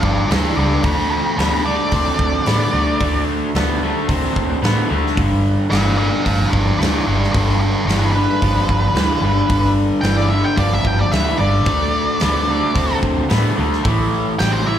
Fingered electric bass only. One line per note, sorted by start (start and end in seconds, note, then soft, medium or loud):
0.03 0.23 G1 medium
0.30 0.50 D2 medium
0.57 0.76 C#2 medium
0.84 1.23 D2 medium
1.38 1.77 D2 medium
1.92 2.12 D2 medium
2.20 2.39 D2 medium
2.47 2.66 A2 medium
2.73 2.93 D2 medium
3.00 3.39 D2 medium
3.55 3.93 D2 medium
4.09 4.28 D2 medium
4.36 4.55 D2 medium
4.63 4.82 A2 medium
4.91 5.19 D2 medium
5.17 5.56 G1 medium
5.71 6.10 G1 medium
6.26 6.45 G1 medium
6.53 6.72 G1 medium
6.79 6.99 D2 medium
7.07 7.26 G1 medium
7.34 7.73 G1 loud
7.86 8.25 G1 medium
8.43 8.62 G1 medium
8.69 8.88 G1 medium
8.94 9.14 D2 medium
9.21 9.41 G1 medium
9.50 9.89 G1 medium
10.03 10.43 G1 medium
10.57 10.77 G1 medium
10.85 11.05 G1 medium
11.12 11.32 D2 medium
11.39 11.66 G1 medium
11.66 12.06 D2 medium
12.22 12.61 D2 loud
12.76 12.95 D2 medium
13.03 13.23 D2 medium
13.31 13.50 A2 medium
13.58 13.77 D2 medium
13.85 14.24 A1 loud
14.40 14.79 A1 medium